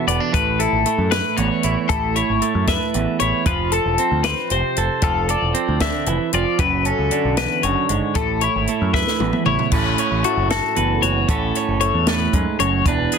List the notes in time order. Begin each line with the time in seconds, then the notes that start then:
Already playing: E2 B2 E3 A4
0.07 E1 B3 D5, closed hi-hat
0.20 D4
0.33 A1 A2 B4, kick, closed hi-hat
0.59 E4 A4, closed hi-hat
0.73 G#1
0.86 A3, closed hi-hat
0.98 F#2
1.11 B4, snare, closed hi-hat
1.37 A1 E2 C#5, closed hi-hat
1.63 A1 E4, closed hi-hat
1.89 A1 A2 A4, kick, closed hi-hat
2.16 E4 C#5, closed hi-hat
2.29 G#1
2.42 A3, closed hi-hat
2.55 F#2
2.67 B4 E5, kick, snare, closed hi-hat
2.94 A1 E2, closed hi-hat
3.20 A1 E4 C#5, closed hi-hat
3.46 F1 F3 B4, kick, closed hi-hat
3.72 A4, closed hi-hat
3.85 E1
3.98 C4, closed hi-hat
4.11 D2
4.24 B4 C5, snare, closed hi-hat
4.50 F1 C3 C5, closed hi-hat
4.76 F1 A4, closed hi-hat
5.02 F1 F3 A4, kick, closed hi-hat
5.29 A4 D5, closed hi-hat
5.42 E1
5.54 C4, closed hi-hat
5.68 D2
5.80 D3 E5, kick, snare, closed hi-hat
6.06 F1 E3, closed hi-hat
6.33 F1 F3 D5, closed hi-hat
6.59 F#1 F#2 B4, kick, closed hi-hat
6.85 C#4 A4, closed hi-hat
6.99 C#2
7.11 D3, closed hi-hat
7.25 B1
7.37 E2 B4, snare, closed hi-hat
7.63 F#1 F#2 C#5, closed hi-hat
7.89 F#1 G#2, closed hi-hat
8.15 A1 A4, kick, closed hi-hat
8.41 E4 C#5, closed hi-hat
8.56 G#1
8.67 A3, closed hi-hat
8.82 F#2
8.94 B4 E5, kick, snare
9.07 snare
9.20 A1 E2, high tom
9.33 mid tom
9.46 A1 E4 C#5, mid tom
9.59 floor tom
9.72 A1 A2 C#4 B4, kick, crash
9.98 C#5, closed hi-hat
10.11 A1
10.24 A3 F#4, closed hi-hat
10.37 F#1
10.50 F#4 A4, snare, closed hi-hat
10.76 F#1 E2 B4, closed hi-hat
11.02 F#1 F#4 C#5, closed hi-hat
11.28 A1 A2 C#4 A4, kick, closed hi-hat
11.55 C#5, closed hi-hat
11.68 F#1
11.81 A3 C#5, closed hi-hat
11.94 E2
12.07 A2 B4, snare, closed hi-hat
12.33 F#2 G#2, kick, closed hi-hat
12.59 F#1 F#2 C#5, closed hi-hat
12.85 E1 E2 D4 B4, kick, closed hi-hat
13.12 G#4, closed hi-hat